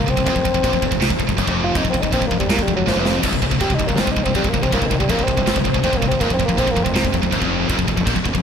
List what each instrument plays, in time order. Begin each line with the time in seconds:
Already playing: bassoon A#3
0.08 fingered electric bass C1, distorted electric guitar C2, bassoon C4, kick
0.17 fingered electric bass C1, distorted electric guitar C2, kick
0.26 fingered electric bass F1, distorted electric guitar F2, kick, china
0.35 fingered electric bass F1, distorted electric guitar F2, kick
0.45 fingered electric bass F1, distorted electric guitar F2, kick
0.54 fingered electric bass F1, distorted electric guitar F2, kick
0.63 fingered electric bass A#1, distorted electric guitar A#2, kick, china
0.73 fingered electric bass F1, distorted electric guitar F2, kick
0.82 fingered electric bass F1, distorted electric guitar F2, kick
0.91 fingered electric bass F1, distorted electric guitar F2, kick
1.01 fingered electric bass C2, distorted electric guitar C3, snare, china
1.10 fingered electric bass F1, distorted electric guitar F2, kick
1.19 fingered electric bass F1, distorted electric guitar F2, kick
1.29 fingered electric bass F1, distorted electric guitar F2, kick
1.38 fingered electric bass F#1, distorted electric guitar F#2, kick, china
1.47 fingered electric bass F1, distorted electric guitar F2, kick
1.64 bassoon F4
1.75 fingered electric bass F1, distorted electric guitar F2, bassoon D#4, kick, china
1.84 fingered electric bass F1, distorted electric guitar F2, kick
1.90 bassoon C4
1.94 fingered electric bass F1, distorted electric guitar F2, kick
2.02 fingered electric bass F1, distorted electric guitar F2, bassoon D#4, kick
2.12 fingered electric bass A#1, distorted electric guitar A#2, bassoon C4, kick, china
2.21 fingered electric bass F1, distorted electric guitar F2, kick
2.27 bassoon A#3
2.31 fingered electric bass F1, distorted electric guitar F2, kick
2.39 fingered electric bass F1, distorted electric guitar F2, bassoon G3, kick
2.49 fingered electric bass C2, distorted electric guitar C3, bassoon A#3, snare, china
2.58 fingered electric bass F1, distorted electric guitar F2, kick
2.63 bassoon G3
2.67 fingered electric bass F1, distorted electric guitar F2, kick
2.76 fingered electric bass F1, distorted electric guitar F2, bassoon F#3
2.87 fingered electric bass F#1, distorted electric guitar F#2, bassoon F3, snare
2.96 fingered electric bass F1, distorted electric guitar F2, bassoon F3
3.05 snare
3.23 fingered electric bass C1, distorted electric guitar C2, kick, china, crash
3.33 fingered electric bass C1, distorted electric guitar C2, kick
3.42 fingered electric bass C1, distorted electric guitar C2, kick
3.51 fingered electric bass C1, distorted electric guitar C2, kick
3.60 fingered electric bass F1, distorted electric guitar F2, bassoon G4, kick, china
3.70 fingered electric bass C1, distorted electric guitar C2, kick
3.74 bassoon D#4
3.79 fingered electric bass C1, distorted electric guitar C2, kick
3.87 fingered electric bass C1, distorted electric guitar C2, bassoon A#3, kick
3.97 fingered electric bass G1, distorted electric guitar G2, bassoon C4, snare, china
4.07 fingered electric bass C1, distorted electric guitar C2, kick
4.12 bassoon D#4
4.16 fingered electric bass C1, distorted electric guitar C2, kick
4.24 fingered electric bass C1, distorted electric guitar C2, bassoon C4, kick
4.35 fingered electric bass F1, distorted electric guitar F2, bassoon G3, kick, china
4.44 fingered electric bass C1, distorted electric guitar C2, kick
4.49 distorted electric guitar C2, bassoon A#3
4.54 fingered electric bass C1, kick
4.62 fingered electric bass C1, distorted electric guitar C2, bassoon C4, kick
4.72 fingered electric bass C1, distorted electric guitar C2, bassoon A#3, kick, china
4.81 fingered electric bass C1, distorted electric guitar C2, kick
4.86 bassoon D#3
4.91 fingered electric bass C1, distorted electric guitar C2, kick
4.99 fingered electric bass C1, distorted electric guitar C2, bassoon G3, kick
5.10 fingered electric bass F1, distorted electric guitar F2, bassoon A#3, kick, china
5.19 fingered electric bass C1, distorted electric guitar C2, kick
5.23 bassoon C4
5.28 fingered electric bass C1, distorted electric guitar C2, kick
5.37 fingered electric bass C1, distorted electric guitar C2, kick
5.47 fingered electric bass G1, distorted electric guitar G2, snare, china
5.56 fingered electric bass C1, distorted electric guitar C2, kick
5.65 fingered electric bass C1, distorted electric guitar C2, kick
5.74 fingered electric bass C1, distorted electric guitar C2, kick
5.84 fingered electric bass F1, distorted electric guitar F2, bassoon C4, kick, china
5.93 fingered electric bass C1, distorted electric guitar C2, kick
5.97 bassoon A#3
6.02 fingered electric bass C1, distorted electric guitar C2, kick
6.08 fingered electric bass C1, distorted electric guitar C2, bassoon C4, kick
6.20 fingered electric bass F1, distorted electric guitar F2, bassoon A#3, kick, china
6.30 fingered electric bass F1, distorted electric guitar F2, bassoon C4, kick
6.39 fingered electric bass F1, distorted electric guitar F2, kick
6.46 fingered electric bass F1, distorted electric guitar F2, bassoon A#3, kick
6.57 fingered electric bass A#1, distorted electric guitar A#2, bassoon C4, kick, china
6.67 fingered electric bass F1, distorted electric guitar F2, kick
6.71 bassoon A#3
6.76 fingered electric bass F1, distorted electric guitar F2, kick
6.83 fingered electric bass F1, distorted electric guitar F2, bassoon C4, kick
6.95 fingered electric bass C2, distorted electric guitar C3, snare, china
7.04 fingered electric bass F1, distorted electric guitar F2, kick
7.14 fingered electric bass F1, distorted electric guitar F2, kick
7.22 fingered electric bass F1, distorted electric guitar F2, kick
7.32 fingered electric bass F#1, distorted electric guitar F#2, kick, china
7.41 fingered electric bass F1, distorted electric guitar F2, kick
7.69 fingered electric bass F1, distorted electric guitar F2, kick, china
7.79 fingered electric bass F1, distorted electric guitar F2, kick
7.88 fingered electric bass F1, distorted electric guitar F2, kick
7.96 fingered electric bass F1, distorted electric guitar F2, kick
8.05 fingered electric bass A#1, distorted electric guitar A#2, kick, china
8.15 fingered electric bass F1, distorted electric guitar F2, kick
8.24 fingered electric bass F1, distorted electric guitar F2, kick
8.34 fingered electric bass F1, distorted electric guitar F2, kick